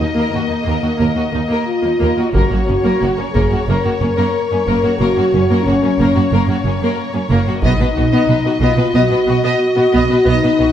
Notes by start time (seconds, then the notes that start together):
Already playing: D#4 D#5
0.00 D#2 D#4
0.13 D#2 A#3
0.17 A#4
0.30 D#2 A#3
0.36 F#4
0.48 D#2 A#3 D#4
0.63 D#2 A#3
0.68 A#4
0.80 D#2 A#3 F#4
0.97 D#2 A#3 A#4
1.14 D#2 A#3 F#4
1.31 D#2 A#3 D#4
1.47 D#2 A#3
1.51 A#4
1.67 F4
1.82 D#2 A#3 D#4
2.00 D#2 A#3 A#4
2.17 D#2 A#3 F#4
2.33 F#1 F#2 A#3 F#4 A#4 C#5, taiko
2.50 F#2 A#3 F#4
2.66 F#1 F#2 A#3 C#4
2.83 F#2 A#3 A#4
3.00 F#1 F#2 A#3 F#4
3.17 F#2 A#3 C#4
3.33 F#1 F#2 A#3 G#4 A#4, taiko
3.51 F#2 A#3 F#4
3.67 F#1 F#2 A#3 A#4
3.84 F#2 A#3 F#4
4.00 F#1 F#2 A#3 C#4
4.16 F#2 A#3 A#4
4.51 F#2 A#3 C#4
4.67 F#1 F#2 A#3 A#4
4.83 F#2 A#3 F#4
4.97 F#1 F#2 A#3 F#4 A#4
5.16 F#2 A#3 F#4
5.33 F#1 F#2 A#3 C#4
5.49 F#2 A#3 A#4
5.63 F#2 A#3 C#4
5.67 F#1 F#4
5.82 F#2 A#3 C#4
5.99 F#1 F#2 A#3 A#4
6.15 F#2 A#3 F#4
6.31 F#1 F#2 A#3 A#4
6.48 F#2 A#3 F#4
6.65 F#1 F#2 A#3 C#4
6.81 F#2 A#3 A#4
7.14 F#2 A#3 C#4
7.30 F#1 F#2 A#3 A#4
7.48 F#2 A#3 F#4
7.62 B1 B2 B3 D#4 D#5, taiko
7.80 B2 B3 B4
7.96 B1 B2 B3 F#4
8.12 B2 B3 D#5
8.28 B1 B2 B3 B4
8.45 B2 B3 F#4
8.61 B1 B2 B3 F4 D#5
8.78 B2 B3 B4
8.94 B1 B2 B3 F#4 D#5
9.10 B2 B3 B4
9.27 B1 B2 B3 F#4
9.43 B2 B3 D#5
9.76 B2 B3 F#4
9.92 B1 B2 B3 D#5
10.08 B2 B3 B4
10.25 B1 B2 B3 D#4 D#5
10.42 B2 B3 B4
10.59 B1 B2 B3 F#4